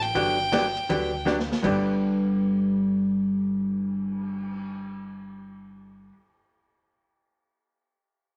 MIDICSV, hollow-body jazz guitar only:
0, 0, Header, 1, 2, 480
1, 0, Start_track
1, 0, Key_signature, 1, "major"
1, 0, Tempo, 372671
1, 192, Time_signature, 4, 2, 24, 8
1, 10777, End_track
2, 0, Start_track
2, 0, Title_t, "Hollow-body jazz guitar"
2, 0, Program_c, 0, 26
2, 192, Note_on_c, 0, 50, 62
2, 197, Note_on_c, 0, 54, 60
2, 202, Note_on_c, 0, 59, 65
2, 202, Note_on_c, 0, 62, 60
2, 208, Note_on_c, 0, 67, 63
2, 477, Note_off_c, 0, 50, 0
2, 480, Note_off_c, 0, 54, 0
2, 482, Note_off_c, 0, 59, 0
2, 482, Note_off_c, 0, 62, 0
2, 485, Note_off_c, 0, 67, 0
2, 670, Note_on_c, 0, 50, 65
2, 677, Note_on_c, 0, 54, 74
2, 682, Note_on_c, 0, 59, 75
2, 683, Note_on_c, 0, 67, 81
2, 686, Note_on_c, 0, 62, 80
2, 822, Note_off_c, 0, 50, 0
2, 825, Note_off_c, 0, 54, 0
2, 828, Note_off_c, 0, 59, 0
2, 829, Note_off_c, 0, 67, 0
2, 830, Note_off_c, 0, 62, 0
2, 1151, Note_on_c, 0, 50, 58
2, 1155, Note_on_c, 0, 54, 59
2, 1160, Note_on_c, 0, 59, 64
2, 1163, Note_on_c, 0, 62, 54
2, 1171, Note_on_c, 0, 67, 61
2, 1437, Note_off_c, 0, 50, 0
2, 1439, Note_off_c, 0, 54, 0
2, 1441, Note_off_c, 0, 59, 0
2, 1443, Note_off_c, 0, 62, 0
2, 1447, Note_off_c, 0, 67, 0
2, 1615, Note_on_c, 0, 50, 68
2, 1623, Note_on_c, 0, 54, 72
2, 1629, Note_on_c, 0, 62, 74
2, 1630, Note_on_c, 0, 59, 64
2, 1635, Note_on_c, 0, 67, 72
2, 1774, Note_off_c, 0, 50, 0
2, 1779, Note_off_c, 0, 54, 0
2, 1781, Note_off_c, 0, 62, 0
2, 1782, Note_off_c, 0, 59, 0
2, 1784, Note_off_c, 0, 67, 0
2, 2093, Note_on_c, 0, 43, 71
2, 2104, Note_on_c, 0, 50, 74
2, 2116, Note_on_c, 0, 59, 71
2, 2129, Note_on_c, 0, 62, 69
2, 2133, Note_on_c, 0, 67, 71
2, 7876, Note_off_c, 0, 43, 0
2, 7881, Note_off_c, 0, 50, 0
2, 7887, Note_off_c, 0, 59, 0
2, 7894, Note_off_c, 0, 62, 0
2, 7896, Note_off_c, 0, 67, 0
2, 10777, End_track
0, 0, End_of_file